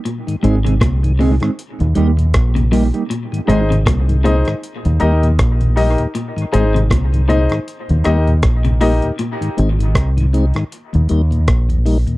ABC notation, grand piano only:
X:1
M:4/4
L:1/8
Q:"Swing 16ths" 1/4=79
K:Ab
V:1 name="Grand piano"
z8 | z [EAce] z [EAce] z [EGBe] z [EGBe] | z [EAce] z [EAce] z [EGBe] z [EGBe] | z8 |]